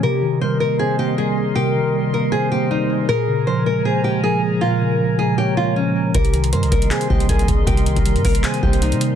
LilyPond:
<<
  \new Staff \with { instrumentName = "Ambient pad" } { \time 4/4 \key c \phrygian \tempo 4 = 157 << { <ees'' c'''>1~ | <ees'' c'''>1 | <aes'' bes''>1~ | <aes'' bes''>1 |
<ees'' c'''>1~ | <ees'' c'''>1 | } \\ { bes'1~ | bes'1~ | bes'1~ | bes'1~ |
bes'1~ | bes'1 | } >> }
  \new Staff \with { instrumentName = "Soft synth lead" } { \time 4/4 \key c \phrygian g'4 bes'4 c''4 bes'8 aes'8 | bes'2 c''2 | aes'4 bes'4 c''4 bes'8 aes'8 | bes'2 des''2 |
g'4 bes'4 c''4 bes'8 aes'8 | bes'2 c''2 | }
  \new Staff \with { instrumentName = "Nylon-string guitar" } { \time 4/4 \key c \phrygian bes'4 c''8 bes'8 aes'8 g'8 aes'8 r8 | g'4. bes'8 aes'8 g'8 ees'4 | bes'4 c''8 bes'8 aes'8 g'8 aes'8 r8 | f'4. aes'8 g'8 f'8 des'4 |
bes'4 c''8 bes'8 aes'8 g'8 aes'8 r8 | g'4. bes'8 aes'8 g'8 ees'4 | }
  \new Staff \with { instrumentName = "Tine electric piano" } { \clef bass \time 4/4 \key c \phrygian c8 ees8 g8 bes8 c'8 bes8 g4 | c8 ees8 g8 bes8 c'8 bes8 g4 | bes,8 des8 f8 aes8 bes8 aes8 f4 | bes,8 des8 f8 aes8 bes8 aes8 f4 |
c8 ees8 g8 bes8 c'8 bes8 g4 | c8 ees8 g8 bes8 c'8 bes8 g4 | }
  \new Staff \with { instrumentName = "808-style bass" } { \clef bass \time 4/4 \key c \phrygian r1 | r1 | r1 | r1 |
c,4 g,16 c,16 c,8 r8 c,8 c,8 c,8 | c,8. c,8 g,16 c,8 r8 c,8. c8. | }
  \new DrumStaff \with { instrumentName = "Drums" } \drummode { \time 4/4 r4 r4 r4 r4 | r4 r4 r4 r4 | r4 r4 r4 r4 | r4 r4 r4 r4 |
<hh bd>16 hh16 hh16 hh16 hh16 hh16 <hh bd>16 hh16 <hc hh>16 hh16 bd16 hh16 <hh bd>16 hh16 <hh bd>8 | <hh bd>16 hh16 hh16 <hh bd>16 hh16 hh16 <hho bd>16 hh16 <hc hh>16 hh16 bd16 hh16 hh16 hh16 hh8 | }
>>